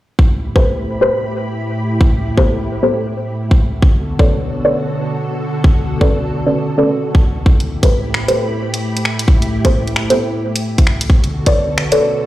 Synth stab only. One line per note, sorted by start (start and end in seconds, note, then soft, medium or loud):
0.56 0.98 G4 medium
0.56 0.98 A4 medium
0.56 0.98 B4 medium
0.56 0.98 C5 medium
1.01 2.34 G4 medium
1.01 2.34 A4 medium
1.01 2.34 B4 medium
1.01 2.34 C5 medium
2.37 2.45 B3 medium
2.37 2.45 G4 medium
2.37 2.45 A4 medium
2.37 2.45 C5 loud
2.83 2.91 B3 medium
2.83 2.91 G4 medium
2.83 2.91 A4 medium
2.83 2.91 C5 medium
4.19 4.61 A4 medium
4.19 4.61 B4 medium
4.19 4.61 C#5 medium
4.19 4.61 D5 medium
4.65 5.98 A4 medium
4.65 5.98 B4 medium
4.65 5.98 C#5 medium
4.65 5.98 D5 medium
6.01 6.09 C#4 medium
6.01 6.09 A4 medium
6.01 6.09 B4 medium
6.01 6.09 D5 medium
6.46 6.54 C#4 medium
6.46 6.54 A4 medium
6.46 6.54 B4 medium
6.46 6.54 D5 medium
6.78 6.91 C#4 medium
6.78 6.91 A4 medium
6.78 6.91 B4 medium
6.78 6.91 D5 loud
7.83 8.25 G4 medium
7.83 8.25 A4 medium
7.83 8.25 B4 medium
7.83 8.25 C5 medium
8.28 9.61 G4 medium
8.28 9.61 A4 medium
8.28 9.61 B4 medium
8.28 9.61 C5 medium
9.65 9.73 B3 medium
9.65 9.73 G4 medium
9.65 9.73 A4 medium
9.65 9.73 C5 loud
10.10 10.18 B3 medium
10.10 10.18 G4 medium
10.10 10.18 A4 medium
10.10 10.18 C5 medium
11.46 11.89 A4 medium
11.46 11.89 B4 medium
11.46 11.89 C#5 medium
11.46 11.89 D5 medium
11.92 12.26 A4 medium
11.92 12.26 B4 medium
11.92 12.26 C#5 medium
11.92 12.26 D5 medium